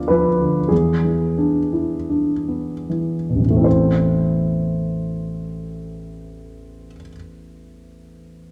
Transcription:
grand piano
Already playing: D2 F3 B3 F4 D5 F5
0.08 F3 B4
0.41 D3
0.68 E2 G#4
1.04 E3
1.38 D4
1.73 E4
2.10 D4
2.48 B3
2.89 E3
3.30 B2
3.35 A1
3.40 E2
3.45 E3
3.50 A3
3.56 C4
3.61 E4 C5

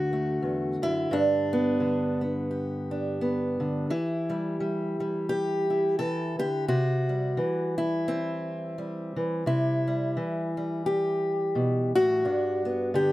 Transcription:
steel-string acoustic guitar
Already playing: D2 D3 A3 F#4
0.13 A3
0.42 E2
0.82 F#2 E4
1.11 G2 D4
1.53 B3
1.80 D3
2.21 B3
2.51 G4
2.91 D4
3.21 B3
3.60 D3
3.90 E3 E4
4.30 G3
4.60 G3
5.00 G3
5.29 G4
5.70 E4
5.99 E3 A4
6.39 D3 G4
6.68 C3 F#4
7.09 G3
7.37 E3
7.78 E4
8.08 C4
8.78 G3
9.16 E3
9.46 C3 E4
9.87 G3
10.17 E3
10.57 G3
10.86 G4
11.55 B2
11.95 A2 F#4
12.25 G2 D4
12.65 B3
12.94 D3 G4

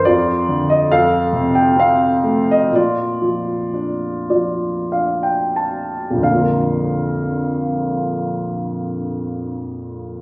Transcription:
grand piano
0.05 F2 F4 D5
0.49 D3
0.70 D#5
0.92 F2 A4 F5
1.33 C3
1.55 G5
1.76 C4 F5
2.23 A3
2.51 D#5
2.71 A#2 F4
2.75 D5
3.22 F3
3.74 D4
4.30 F3 D5
4.92 D4 F5
5.23 G5
5.56 A5
6.11 A#1
6.16 F2
6.22 D3 F5
6.28 A#3
6.34 F4
6.40 A#4

